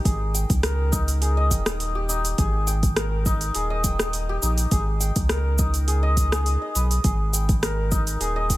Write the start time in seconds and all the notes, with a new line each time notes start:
Already playing: D#4 G4 A#4 D#5 G5
0.05 G#1 G#4, kick, open hi-hat, shaker
0.34 G5, open hi-hat, shaker
0.50 C#2, kick, open hi-hat, shaker
0.63 A#4, cross-stick, open hi-hat, shaker
0.92 D#4, kick, shaker
1.08 open hi-hat, shaker
1.21 G#4, open hi-hat, shaker
1.37 D#5
1.51 D#1 G5, kick, open hi-hat, shaker
1.66 D#5, cross-stick, open hi-hat, shaker
1.80 open hi-hat, shaker
1.95 G4
2.09 D#4, shaker
2.25 open hi-hat, shaker
2.38 G#1 G#4, kick, open hi-hat, shaker
2.67 G5, open hi-hat, shaker
2.83 kick, open hi-hat, shaker
2.96 A#4, cross-stick, open hi-hat, shaker
3.26 D#4, kick, shaker
3.41 open hi-hat, shaker
3.55 D#1 G#4, open hi-hat, shaker
3.70 D#5
3.84 G5, kick, open hi-hat, shaker
3.99 cross-stick, open hi-hat, shaker
4.13 open hi-hat, shaker
4.29 G4
4.42 A#1 D#4, shaker
4.58 open hi-hat, shaker
4.71 G#1 G#4, kick, open hi-hat, shaker
5.00 G5, open hi-hat, shaker
5.16 C#2, kick, open hi-hat, shaker
5.29 A#4, cross-stick, open hi-hat, shaker
5.58 D#4, kick, shaker
5.74 open hi-hat, shaker
5.88 G#4, open hi-hat, shaker
6.03 D#5
6.17 D#5, kick, open hi-hat, shaker
6.32 G#4, cross-stick, open hi-hat, shaker
6.46 open hi-hat, shaker
6.62 D#5
6.75 B1 B4, open hi-hat, shaker
6.91 open hi-hat, shaker
7.04 G#1 G#4, kick, open hi-hat, shaker
7.33 G5, open hi-hat, shaker
7.49 kick, open hi-hat, shaker
7.63 A#4, cross-stick, open hi-hat, shaker
7.91 D#4, kick, shaker
8.07 open hi-hat, shaker
8.20 D#1 G#4, open hi-hat, shaker
8.36 D#5
8.50 G5, kick, open hi-hat, shaker